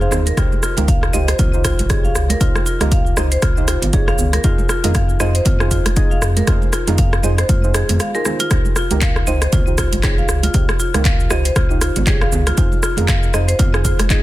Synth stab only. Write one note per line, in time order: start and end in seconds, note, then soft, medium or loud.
0.01 0.09 D#4 medium
0.01 0.09 F4 medium
0.01 0.09 G#4 medium
0.01 0.09 C5 loud
0.12 0.35 D#4 loud
0.12 0.35 F4 medium
0.12 0.35 G#4 medium
0.12 0.35 C5 loud
0.37 0.74 D#4 medium
0.37 0.74 F4 medium
0.37 0.74 G4 medium
0.37 0.74 C5 loud
0.77 1.11 D#4 loud
0.77 1.11 F4 medium
0.77 1.11 G4 medium
0.77 1.11 A#4 loud
1.13 1.21 D#4 loud
1.13 1.21 F4 medium
1.13 1.21 G4 medium
1.13 1.21 C5 loud
1.54 1.87 D#4 medium
1.54 1.87 F4 medium
1.54 1.87 G4 medium
1.54 1.87 C5 loud
1.90 2.38 D#4 medium
1.90 2.38 F4 medium
1.90 2.38 G4 medium
1.90 2.38 C#5 loud
2.41 2.77 D#4 loud
2.41 2.77 F4 medium
2.41 2.77 G4 medium
2.41 2.77 C5 loud
2.81 3.14 D#4 loud
2.81 3.14 F4 medium
2.81 3.14 G4 medium
2.81 3.14 A#4 loud
3.17 3.24 D#4 loud
3.17 3.24 F4 medium
3.17 3.24 G4 medium
3.17 3.24 C5 loud
3.57 3.91 D#4 medium
3.57 3.91 F4 medium
3.57 3.91 G4 medium
3.57 3.91 C5 loud
3.93 4.42 D#4 medium
3.93 4.42 F4 medium
3.93 4.42 G4 medium
3.93 4.42 C#5 loud
4.44 4.81 D#4 loud
4.44 4.81 F4 medium
4.44 4.81 G#4 medium
4.44 4.81 C5 loud
4.84 5.18 D#4 loud
4.84 5.18 F4 medium
4.84 5.18 G#4 medium
4.84 5.18 A#4 loud
5.20 5.28 D#4 loud
5.20 5.28 F4 medium
5.20 5.28 G#4 medium
5.20 5.28 C5 loud
5.60 5.94 D#4 medium
5.60 5.94 F4 medium
5.60 5.94 G#4 medium
5.60 5.94 C5 medium
5.97 6.45 D#4 medium
5.97 6.45 F4 medium
5.97 6.45 G#4 medium
5.97 6.45 D#5 loud
6.47 6.84 D#4 medium
6.47 6.84 F4 medium
6.47 6.84 G#4 medium
6.47 6.84 C5 loud
6.88 7.21 D#4 loud
6.88 7.21 F4 medium
6.88 7.21 G#4 medium
6.88 7.21 A#4 loud
7.24 7.31 D#4 loud
7.24 7.31 F4 medium
7.24 7.31 G#4 medium
7.24 7.31 C5 loud
7.64 7.72 D#4 medium
7.64 7.72 F4 medium
7.64 7.72 G#4 medium
7.64 7.72 C5 loud
7.75 7.82 D#4 medium
7.75 7.82 F4 medium
7.75 7.82 G#4 medium
7.75 7.82 C5 medium
8.15 8.23 D#4 medium
8.15 8.23 F4 medium
8.15 8.23 G#4 medium
8.15 8.23 C5 loud
8.25 8.48 D#4 medium
8.25 8.48 F4 medium
8.25 8.48 G#4 medium
8.25 8.48 C5 loud
8.51 8.88 D#4 medium
8.51 8.87 F4 medium
8.51 8.87 G4 medium
8.51 8.87 C5 loud
8.91 9.25 D#4 loud
8.91 9.25 F4 medium
8.91 9.25 G4 medium
8.91 9.25 A#4 loud
9.27 9.35 D#4 loud
9.27 9.35 F4 medium
9.27 9.35 G4 medium
9.27 9.35 C5 loud
9.67 10.01 D#4 medium
9.67 10.01 F4 medium
9.67 10.01 G4 medium
9.67 10.01 C5 medium
10.03 10.52 D#4 medium
10.03 10.52 F4 medium
10.03 10.52 G4 medium
10.03 10.52 C#5 loud
10.54 10.91 D#4 loud
10.54 10.91 F4 medium
10.54 10.91 G4 medium
10.54 10.91 C5 loud
10.94 11.28 D#4 loud
10.94 11.28 F4 medium
10.94 11.28 G4 medium
10.94 11.28 A#4 loud
11.30 11.38 D#4 loud
11.30 11.38 F4 medium
11.30 11.38 G4 medium
11.30 11.38 C5 loud
11.71 12.04 D#4 medium
11.71 12.04 F4 medium
11.71 12.04 G4 medium
11.71 12.04 C5 loud
12.07 12.55 D#4 medium
12.07 12.55 F4 medium
12.07 12.55 G4 medium
12.07 12.55 C#5 loud
12.58 12.94 D#4 medium
12.58 12.94 F4 medium
12.58 12.94 G#4 medium
12.58 12.94 C5 loud
12.98 13.31 D#4 loud
12.98 13.31 F4 medium
12.98 13.31 G#4 medium
12.98 13.31 A#4 loud
13.34 13.41 D#4 loud
13.34 13.41 F4 medium
13.34 13.41 G#4 medium
13.34 13.41 C5 loud
13.74 14.08 D#4 medium
13.74 14.08 F4 medium
13.74 14.08 G#4 medium
13.74 14.08 C5 loud
14.10 14.23 D#4 medium
14.10 14.23 F4 medium
14.10 14.23 G#4 medium
14.10 14.23 D#5 loud